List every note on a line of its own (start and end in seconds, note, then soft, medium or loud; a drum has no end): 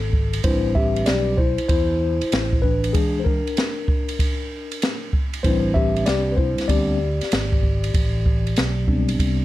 0.00 0.41 G#1 medium
0.00 0.41 A4 medium
0.13 kick medium
0.33 ride medium
0.44 1.04 A1 loud
0.44 1.34 G3 medium
0.44 1.34 C4 soft
0.44 1.35 D4 medium
0.44 0.74 E4 medium
0.44 1.34 B4 soft
0.44 0.73 C5 loud
0.44 kick loud
0.44 ride medium
0.75 1.05 G4 medium
0.75 1.08 E5 medium
0.75 kick medium
0.96 ride soft
1.06 1.56 B1 medium
1.06 1.36 G4 medium
1.06 1.39 D5 medium
1.06 snare medium
1.06 hi-hat pedal soft
1.06 ride medium
1.37 1.68 E4 medium
1.37 1.67 C5 medium
1.37 kick medium
1.58 muted fretless electric bass stroke soft
1.58 ride medium
1.69 2.19 E2 medium
1.69 2.60 E4 medium
1.69 2.59 C5 medium
1.69 kick medium
1.69 ride medium
2.21 muted fretless electric bass stroke soft
2.21 ride medium
2.32 2.92 A1 medium
2.32 snare loud
2.32 hi-hat pedal medium
2.32 ride medium
2.53 kick medium
2.62 2.93 D4 medium
2.62 2.95 B4 medium
2.62 kick medium
2.84 ride medium
2.93 3.40 E3 medium
2.93 3.40 G#3 medium
2.93 3.19 D4 medium
2.93 3.21 G#4 medium
2.93 kick loud
2.93 ride medium
3.19 3.25 C5 medium
3.24 5.10 D4 medium
3.24 5.08 A#4 medium
3.24 kick medium
3.47 ride soft
3.57 snare loud
3.57 hi-hat pedal soft
3.57 ride medium
3.88 kick medium
4.09 ride medium
4.19 kick medium
4.19 ride medium
4.72 ride medium
4.82 snare loud
4.82 hi-hat pedal medium
4.82 ride medium
5.13 kick medium
5.33 ride medium
5.43 6.04 A1 loud
5.43 6.68 G3 medium
5.43 6.68 C4 medium
5.43 6.68 D4 medium
5.43 5.74 E4 medium
5.43 6.31 B4 soft
5.43 5.76 C5 medium
5.43 kick loud
5.43 ride medium
5.74 6.05 G4 medium
5.74 6.07 E5 loud
5.74 kick medium
5.96 ride soft
6.06 6.56 C2 medium
6.06 6.32 G4 medium
6.06 6.34 D5 loud
6.06 snare medium
6.06 hi-hat pedal soft
6.06 ride medium
6.32 6.38 B4 medium
6.37 6.68 E4 medium
6.37 6.66 C5 medium
6.37 kick medium
6.58 snare soft
6.58 ride medium
6.68 7.19 D2 loud
6.68 6.97 G3 medium
6.68 6.97 B3 soft
6.68 6.97 C4 soft
6.68 6.98 D4 medium
6.68 9.45 G4 medium
6.68 9.45 D5 medium
6.68 kick medium
6.68 ride medium
7.21 muted fretless electric bass stroke soft
7.21 snare soft
7.21 ride medium
7.32 7.91 G#1 medium
7.32 snare loud
7.32 hi-hat pedal medium
7.32 ride medium
7.52 kick medium
7.63 kick medium
7.84 ride medium
7.94 8.54 A1 medium
7.94 kick loud
7.94 ride medium
8.26 kick medium
8.47 ride soft
8.56 9.16 B1 medium
8.56 snare loud
8.56 hi-hat pedal soft
8.56 ride medium
8.87 9.45 G3 medium
8.87 9.45 B3 soft
8.87 9.45 C4 soft
8.87 9.45 D4 medium
8.87 kick medium
9.08 ride medium
9.19 9.45 C2 medium
9.19 kick medium
9.19 ride medium